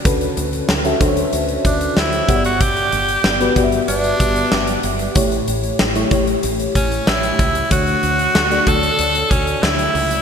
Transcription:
<<
  \new Staff \with { instrumentName = "FM electric piano" } { \time 4/4 \key d \major \tempo 4 = 94 <cis' fis' a' b'>4 r16 <cis' fis' a' e''>16 <d' fis' a' c'' cis''>4.~ <d' fis' a' c'' cis''>16 r16 <b g' cis'' d'' fis''>8~ | <b g' cis'' d'' fis''>4 r16 <b fis' g' b'>16 <b fis' g' d'' e''>4.~ <b fis' g' d'' e''>16 r8. | <a e' g' cis''>4 r16 <a e' g' cis''>16 <a e' g' cis''>4.~ <a e' g' cis''>16 r8. | <a d' fis' cis''>4 r16 <a d' fis' d''>16 <d a fis' a'>4.~ <d a fis' a'>16 r8. | }
  \new Staff \with { instrumentName = "FM electric piano" } { \clef bass \time 4/4 \key d \major d4. r2 g,8~ | g,4 r2. | a,4. r2 r8 | d4. r2 r8 | }
  \new Staff \with { instrumentName = "Tenor saxophone" } { \time 4/4 \key d \major r2 r8 d'8 e'8. fis'16 | g'4. r8 d'4. r8 | r2 r8 cis'8 e'4 | fis'4. a'4 cis'8 e'4 | }
  \new Staff \with { instrumentName = "Fretless electric bass" } { \clef bass \time 4/4 \key d \major d,8 d,8 d,8 d,8 d,8 d,8 d,8 g,,8~ | g,,8 g,,8 g,,8 g,,8 g,,8 g,,8 g,,8 g,,8 | a,,8 a,,8 a,,8 a,,8 a,,8 a,,8 a,,8 cis,8 | d,8 d,8 d,8 d,8 d,8 d,8 d,8 cis,8 | }
  \new DrumStaff \with { instrumentName = "Drums" } \drummode { \time 4/4 <hh bd>16 hh16 hh16 hh16 sn16 hh16 <hh bd>16 hh16 hh16 hh16 <hh bd>16 hh16 sn16 hh16 <hh bd>16 hh16 | <hh bd>16 hh16 hh16 hh16 sn16 hh16 <hh bd>16 hh16 hh16 hh16 <hh bd>16 hh16 sn16 hh16 hh16 hh16 | <hh bd>16 hh16 hh16 hh16 sn16 hh16 <hh bd>16 hh16 hh16 hh16 <hh bd>16 hh16 sn16 hh16 <hh bd>16 hh16 | <hh bd>16 hh16 hh16 hh16 sn16 hh16 <hh bd>16 hh16 hh16 hh16 <hh bd>16 hh16 sn16 hh16 hho16 hh16 | }
>>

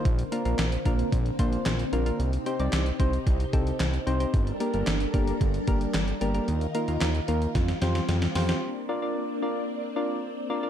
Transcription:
<<
  \new Staff \with { instrumentName = "Synth keys" } { \time 4/4 \key bes \major \tempo 4 = 112 r8 <bes d' f' bes'>16 <bes d' f' bes'>8 r16 <bes d' f' bes'>8 r8 <bes d' f' c''>8 r8 <bes d' f' bes'>16 <bes d' f' bes'>16 | r8 <c' ees' g' c''>16 <c' ees' g' d''>8 r16 <c' ees' g' c''>8 r8 <c' ees' g' a'>8 r8 <c' ees' g' c''>16 <c' ees' g' c''>16 | r8 <bes d' g' bes'>16 <bes d' g' bes'>8 r16 <bes d' g' bes'>8 r8 <bes d' g' bes'>8 r8 <bes d' g' bes'>16 <bes d' g' bes'>16 | r8 <bes ees' f' bes'>16 <bes ees' f' bes'>8 r16 <bes ees' f' bes'>8 r8 <c' f' g' c''>8 r8 <c' f' g' c''>16 <c' f' g' c''>16 |
r8 <d' f' bes' d''>16 <d' f' bes' d''>8 r16 <d' f' bes' d''>8 r8 <d' f' bes' d''>8 r8 <d' f' bes' d''>16 <d' f' bes' d''>16 | }
  \new Staff \with { instrumentName = "String machine" } { \time 4/4 \key bes \major <d bes c'>1 | <c ees' g'>1 | <g d' a' bes'>1 | <ees ees' f' bes'>2 <g c'>2 |
<bes c' d'>1 | }
  \new Staff \with { instrumentName = "Analog synth bass" } { \clef bass \time 4/4 \key bes \major bes,,8 r16 bes,,16 bes,,8 bes,,8 bes,,8 bes,,8 bes,,8 bes,,8 | c,8 r16 c,16 c,8 c,8 c,8 c,8 c,8 c,8 | g,,8 r16 g,,16 g,,8 g,,8 g,,8 g,,8 g,,8 g,,8 | ees,8 r16 ees,16 ees,8 ees,8 f,8 f,8 f,8 f,8 |
r1 | }
  \new DrumStaff \with { instrumentName = "Drums" } \drummode { \time 4/4 <hh bd>16 hh16 hh16 hh16 <hc hh sn>16 hh16 <hh bd>16 hh16 <hh bd>16 hh16 <hh bd>16 hh16 <hc hh sn>16 hh16 hh16 hh16 | hh16 hh16 hh16 hh16 <hc hh sn>16 hh16 <hh bd>16 hh16 <hh bd>16 hh16 <hh bd>16 hh16 <hc hh sn>16 hh16 hh16 hh16 | <hh bd>16 hh16 hh16 hh16 <hc hh sn>16 hh16 <hh bd>16 hh16 <hh bd>16 hh16 <hh bd>16 hh16 <hc hh sn>16 hh16 hh16 hh16 | hh16 hh16 hh16 hh16 <hc hh sn>16 hh16 hh16 hh16 <hh bd sn>16 <hh sn>16 <hh sn>16 <hh sn>16 <hh sn>16 <hh sn>16 <hho sn>16 <hh sn>16 |
r4 r4 r4 r4 | }
>>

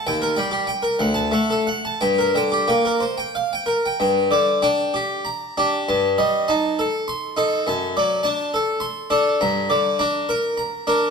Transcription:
<<
  \new Staff \with { instrumentName = "Harpsichord" } { \time 6/8 \key g \minor \tempo 4. = 66 g''16 bes'16 g''16 g'16 g''16 bes'16 fis''16 a''16 fis''16 a'16 fis''16 a''16 | g''16 bes'16 g''16 g'16 g''16 bes'16 c''16 g''16 f''16 g''16 bes'16 g''16 | g''8 d''8 g''8 g'8 bes''8 g'8 | a''8 ees''8 a''8 a'8 c'''8 a'8 |
a''8 d''8 a''8 a'8 c'''8 a'8 | bes''8 d''8 bes''8 bes'8 bes''8 bes'8 | }
  \new Staff \with { instrumentName = "Harpsichord" } { \clef bass \time 6/8 \key g \minor ees,8 g8 r8 d,8 a8 r8 | g,8 d8 bes8 r4. | g,8 d8 d'8 r4 d'8 | g,8 g8 ees'8 r4 ees'8 |
fis,8 fis8 d'8 r4 d'8 | g,8 d8 d'8 r4 d'8 | }
>>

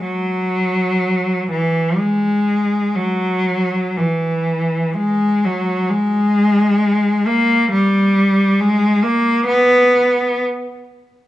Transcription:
\new Staff \with { instrumentName = "Cello" } { \clef bass \time 4/4 \key gis \minor \tempo 4 = 64 fis4. e8 gis4 fis4 | e4 gis8 fis8 gis4. ais8 | g4 gis8 ais8 b4 r4 | }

